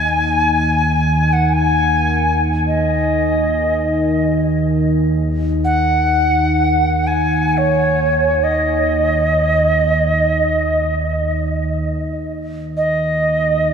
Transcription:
Already playing: D#2 D#3 A#3 G#5
1.33 F#5
1.53 G#5
2.67 D#5
5.64 F#5
7.07 G#5
7.58 C#5
8.44 D#5
11.91 D#2 D#3
12.77 D#5

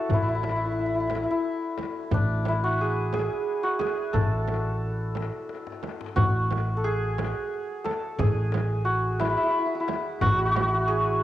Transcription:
Already playing: D4 E4 F#4 A4
0.09 A1, frame drum, tombak dum
0.13 E4
0.22 E4
0.28 E4
0.35 E4
0.43 E4, tombak tek, frame drum
0.51 E4
0.56 E4
0.65 E4
0.72 E4
0.78 E4, tombak ka
0.86 E4
0.95 E4
1.00 E4
1.08 E4, tombak tek, frame drum
1.15 E4
1.23 E4
1.31 E4
1.78 tombak tek, frame drum
2.11 A1 D4, frame drum, tombak dum
2.45 E4, tombak tek, frame drum
2.64 F#4
2.80 G#4, tombak ka
3.13 G#4, tombak tek, frame drum
3.63 F#4
3.79 G#4, tombak tek, frame drum
4.13 A1 A4, frame drum, tombak dum
4.47 tombak tek, frame drum
4.83 tombak ka
5.15 tombak tek, frame drum
5.49 tombak tek
5.67 tombak ka
5.83 tombak tek, frame drum
6.01 tombak ka
6.16 A1 F#4, frame drum, tombak dum
6.51 tombak tek, frame drum
6.77 A4
6.84 G#4
7.18 tombak tek, frame drum
7.53 tombak ka
7.84 A4, tombak tek, frame drum
8.19 A1 G#4, frame drum, tombak dum
8.52 tombak tek, frame drum
8.85 F#4
9.20 E4, tombak tek, frame drum
9.30 E4
9.37 E4
9.43 E4
9.50 E4
9.59 E4
9.66 E4
9.75 E4
9.80 E4
9.88 tombak tek, frame drum
10.21 A1 F#4, tombak dum, frame drum
10.30 F#4
10.38 F#4
10.45 F#4
10.51 F#4
10.56 F#4, tombak tek, frame drum
10.68 F#4
10.74 F#4
10.88 G#4

